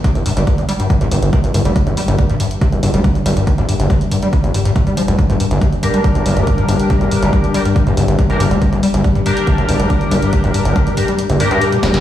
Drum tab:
HH |xxoxxxoxxxoxxxox|xxoxxxoxxxoxxxox|xxoxxxoxxxoxxxox|xxoxxxoxxxoxxxox|
SD |----------------|----------------|----------------|----------------|
BD |o---o---o---o---|o---o---o---o---|o---o---o---o---|o---o---o---o---|

HH |xxoxxxoxxxoxxxox|xxoxxxoxxxoxxxox|xxoxxxoxxxoxxxox|
SD |----------------|----------------|--------------oo|
BD |o---o---o---o---|o---o---o---o---|o---o-----------|